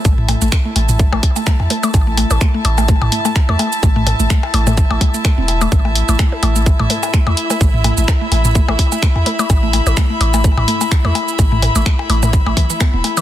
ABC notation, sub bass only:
X:1
M:4/4
L:1/16
Q:"Swing 16ths" 1/4=127
K:Clyd
V:1 name="Sub bass" clef=bass
A,,,3 A,,, z2 A,,,3 A,,, z3 E,, z2 | A,,,3 A,,, z2 A,,,3 A,,, z3 E,, z2 | A,,,3 A,,, z2 A,,,3 A,,, z3 E,,,3 | A,,,3 A,,, z2 A,,,3 A,,, z3 E,, z2 |
A,,,3 A,,, z2 A,,,3 A,,, z3 E,, z2 | A,,,3 A,,, z2 A,,,3 A,,, z3 E,, z2 | A,,,3 A,,, z2 A,,,3 A,,, z3 E,,, z2 |]